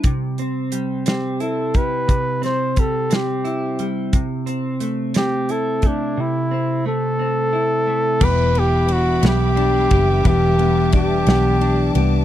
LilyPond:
<<
  \new Staff \with { instrumentName = "String section" } { \time 6/8 \key e \minor \tempo 4. = 59 << { r2. | r2. | r2. | r2. |
<g e'' d'''>2.~ | <g e'' d'''>2. | } \\ { r2. | r2. | r2. | r2. |
b''2. | a''2. | } >> }
  \new Staff \with { instrumentName = "Flugelhorn" } { \time 6/8 \key e \minor r4. g'8 a'8 b'8~ | b'8 c''8 a'8 g'4 r8 | r4. g'8 a'8 d'8 | e'4 a'2 |
b'8 g'8 fis'8 g'4. | g'4 g'4. r8 | }
  \new Staff \with { instrumentName = "Steel-string acoustic guitar" } { \time 6/8 \key e \minor r2. | r2. | r2. | r2. |
b8 b8 d'8 g'8 d'8 b8 | b8 b8 d'8 g'8 d'8 b8 | }
  \new Staff \with { instrumentName = "Clean electric guitar" } { \time 6/8 \key e \minor c8 c'8 g8 c'8 e'8 g8 | c8 c'8 g8 c'8 e'8 g8 | c8 c'8 a8 c'8 e'8 a8 | c8 c'8 a8 c'8 e'8 a8 |
<e g'>8 b4 b8 d'8 g'8 | <e g'>8 b8 g'8 b8 d'8 g'8 | }
  \new Staff \with { instrumentName = "Fingered electric bass" } { \clef bass \time 6/8 \key e \minor r2. | r2. | r2. | r2. |
e,,4. b,,4 fis,,8 | e,,4. b,,4 c,8 | }
  \new DrumStaff \with { instrumentName = "Drums" } \drummode { \time 6/8 <hh bd>8 hh8 hh8 <hh sn>8 hh8 <hh bd>8 | <hh bd>8 <hh sn>8 <hh bd>8 <hh sn>8 hh8 hh8 | <hh bd>8 hh8 hh8 <hh sn>8 hh8 <hh bd>8 | r4. r4. |
<cymc bd>8 cymr8 cymr8 <cymr sn>8 cymr8 <bd cymr>8 | <bd cymr>8 cymr8 <bd cymr>8 <cymr sn>8 cymr8 cymr8 | }
>>